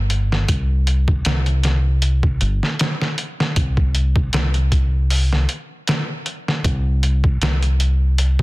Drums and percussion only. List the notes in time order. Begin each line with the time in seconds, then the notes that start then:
0.10 closed hi-hat
0.32 snare
0.48 kick, closed hi-hat
0.87 closed hi-hat
1.08 kick
1.25 snare, closed hi-hat
1.46 closed hi-hat
1.63 snare, closed hi-hat
2.02 closed hi-hat
2.23 kick
2.41 closed hi-hat
2.63 snare
2.79 snare, closed hi-hat
3.02 snare
3.18 closed hi-hat
3.40 snare
3.56 kick, closed hi-hat
3.77 kick
3.95 closed hi-hat
4.16 kick
4.33 snare, closed hi-hat
4.54 closed hi-hat
4.72 kick, closed hi-hat
5.10 open hi-hat
5.33 snare
5.49 closed hi-hat
5.87 snare, closed hi-hat
6.26 closed hi-hat
6.48 snare
6.64 kick, closed hi-hat
7.03 closed hi-hat
7.24 kick
7.42 snare, closed hi-hat
7.63 closed hi-hat
7.80 closed hi-hat
8.18 closed hi-hat
8.39 kick